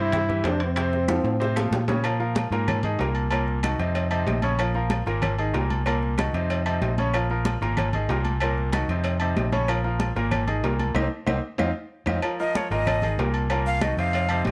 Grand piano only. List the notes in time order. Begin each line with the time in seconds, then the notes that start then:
Already playing: C3 C4 C5
0.29 E3 E4 G4
0.44 C3 C4 C5
0.77 C3 C4 C5
1.09 F3 F4 A4
1.40 C3 C4 C5
1.56 F3 F4 A4
1.89 C#3 C#4 C#5
2.04 F3 F4 A#4
2.20 F3 F4 A#4
2.52 A#2 A#3 A#4
2.83 D#3 D#4 G#4
3.00 A#2 A#3 A#4
3.31 A#2 A#3 A#4
3.63 D#3 D#4 F#4
3.79 C3 C4 D#4
4.11 C3 C4 D#4
4.43 C#3 C#4 C#5
4.59 F3 F4 A#4
4.75 F3 F4 A#4
5.07 A#2 A#3 A#4
5.39 D#3 D#4 G#4
5.53 A#2 A#3 A#4
5.86 A#2 A#3 A#4
6.18 D#3 D#4 F#4
6.34 C3 C4 D#4
6.66 C3 C4 D#4
6.99 C#3 C#4 C#5
7.14 F3 F4 A#4
7.30 F3 F4 A#4
7.62 A#2 A#3 A#4
7.94 D#3 D#4 G#4
8.10 A#2 A#3 A#4
8.43 A#2 A#3 A#4
8.74 D#3 D#4 F#4
8.91 C3 C4 D#4
9.21 C3 C4 D#4
9.52 C#3 C#4 C#5
9.69 F3 F4 A#4
9.84 F3 F4 A#4
10.16 A#2 A#3 A#4
10.47 D#3 D#4 G#4
10.64 A#2 A#3 A#4
10.95 A#3 C4 D#4
11.26 A#3 C4 D#4
11.59 C4 D#4 F4
12.07 C4 D#4 F4
12.23 F3 F4 A#4
12.40 F3 F4 A#4
12.71 A#2 A#3 A#4
13.03 D#3 D#4 G#4
13.19 A#2 A#3 A#4
13.51 A#2 A#3 A#4
13.83 D#3 D#4 F#4
13.99 C3 C4 D#4
14.31 C3 C4 D#4